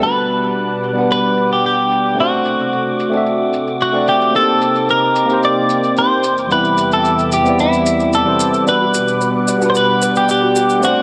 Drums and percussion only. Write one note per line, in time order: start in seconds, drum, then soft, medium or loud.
0.02 shaker soft
0.29 shaker medium
0.43 shaker soft
0.56 shaker soft
0.83 shaker medium
0.97 shaker soft
1.10 shaker soft
1.37 shaker medium
1.51 shaker soft
1.64 shaker soft
1.91 shaker medium
2.05 shaker soft
2.19 shaker soft
2.45 shaker medium
2.59 shaker soft
2.73 shaker soft
3.00 shaker medium
3.13 shaker soft
3.26 shaker soft
3.53 shaker medium
3.67 shaker soft
3.81 shaker soft
4.08 shaker medium
4.22 shaker soft
4.35 shaker soft
4.62 shaker medium
4.75 shaker soft
4.89 shaker soft
5.16 shaker medium
5.30 shaker soft
5.43 shaker soft
5.70 shaker medium
5.84 shaker soft
5.97 shaker soft
6.24 shaker medium
6.38 shaker soft
6.51 shaker soft
6.65 shaker soft
6.78 shaker medium
6.92 shaker soft
7.05 shaker soft
7.19 shaker soft
7.32 shaker medium
7.46 shaker soft
7.59 shaker soft
7.73 shaker soft
7.86 shaker medium
8.00 shaker soft
8.13 shaker soft
8.40 shaker medium
8.54 shaker soft
8.67 shaker soft
8.94 shaker medium
9.08 shaker soft
9.21 shaker soft
9.48 shaker medium
9.62 shaker soft
9.75 shaker soft
10.02 shaker medium
10.16 shaker soft
10.29 shaker soft
10.56 shaker medium
10.70 shaker soft
10.83 shaker soft